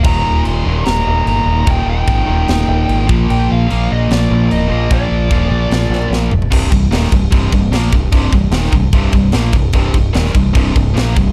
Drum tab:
CC |x---x---x---x---|x---x---x---x---|x---x---x---x---|x---x---x-------|
SD |--------o-------|--------o-------|--------o-------|--------o-o-o---|
T2 |----------------|----------------|----------------|--------------o-|
FT |----------------|----------------|----------------|---------------o|
BD |o---------------|o---o---------o-|----------------|o---o-----------|

CC |x-x-x-x-x-x-x-x-|x-x-x-x-x-x-x-x-|x-x-x-x-x-x-x-x-|
SD |----oo------o---|----oo------o---|----oo------o---|
T2 |----------------|----------------|----------------|
FT |----------------|----------------|----------------|
BD |o-o---o-o-o---o-|o-o---o-o-o---o-|o-o---o-o-o---o-|